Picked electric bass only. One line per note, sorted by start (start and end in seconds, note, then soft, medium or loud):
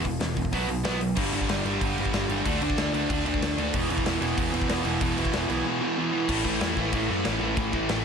0.00 0.16 E1 loud
0.21 0.34 E1 medium
0.37 0.50 E1 medium
0.53 0.67 B1 loud
0.69 0.85 B1 medium
0.85 1.12 B1 medium
1.17 1.29 G1 loud
1.33 1.44 G1 medium
1.48 1.60 G1 medium
1.65 1.76 G1 medium
1.81 1.93 G1 medium
1.97 2.09 G1 medium
2.13 2.25 G1 medium
2.29 2.41 G1 loud
2.45 2.57 D2 loud
2.61 2.73 D2 medium
2.77 2.89 D2 medium
2.93 3.05 D2 medium
3.10 3.21 D2 loud
3.25 3.37 D2 medium
3.41 3.53 D2 loud
3.57 3.69 D2 medium
3.74 3.85 E1 loud
3.89 4.01 E1 medium
4.05 4.17 E1 medium
4.21 4.33 E1 medium
4.38 4.49 E1 loud
4.53 4.65 E1 medium
4.68 4.80 E1 medium
4.85 4.96 E1 medium
5.01 5.13 E1 loud
5.17 5.29 E1 medium
5.33 5.45 E1 loud
5.50 5.61 B1 medium
6.28 6.43 A1 loud
6.44 6.59 A1 loud
6.61 6.75 E2 medium
6.77 6.91 A1 loud
6.93 7.07 A1 loud
7.09 7.23 F#2 medium
7.25 7.39 A1 loud
7.41 7.55 A1 medium
7.57 7.71 A1 loud
7.73 7.87 A1 loud
7.89 8.03 A1 loud